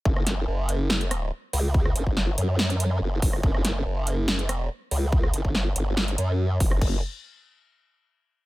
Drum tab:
CC |----------------|----------------|----------------|----------------|
HH |--x---x--xx---o-|--x---x--xx---o-|--x---x--xx---o-|--x---x--xx---o-|
SD |-ro-----o-r-----|-r--o---o------r|-ro-----o-r-----|-r--o---o------r|
BD |o---------------|o--o----------o-|o---------------|o--o----------o-|

CC |x---------------|
HH |----------------|
SD |----------------|
BD |o---------------|